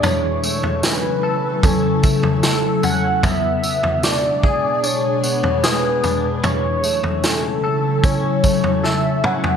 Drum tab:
TB |x-x-x---x-x-x-x-|x-x-x---x-x-x-x-|x-x-x---x-x-----|
SD |----o-------o---|----o-------o---|----o-------o---|
T2 |----------------|----------------|--------------o-|
FT |o--o----o--o--o-|o--o-------o--o-|o--o-------o---o|
BD |--------o-o-----|o-----o---------|--------o-o-----|